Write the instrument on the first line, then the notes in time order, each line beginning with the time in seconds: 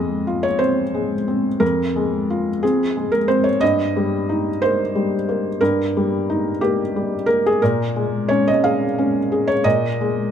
felt piano
Already playing: F2 G#3 D#5
0.27 F4
0.43 C#5
0.59 C4 C5
0.94 G#3
1.28 C4
1.60 F2 A#4
1.96 G#3
2.30 F4
2.63 C4 G#4
2.97 G#3
3.12 A#4
3.28 C4 C5
3.44 C#5
3.61 G2 D#5
3.96 G3
4.29 D#4
4.62 A#3 C5
4.95 G3
5.29 A#3
5.61 G2 A#4
5.97 G3
6.30 D#4
6.61 A#3 G4
6.96 G3
7.26 A#3 A#4
7.46 G#4
7.62 A#2 A#4
7.96 G#3
8.29 C#4 C#5
8.48 D#5
8.64 G#4 F5
8.98 C#4
9.32 G#4
9.47 C#5
9.64 A#2 D#5
10.01 G#3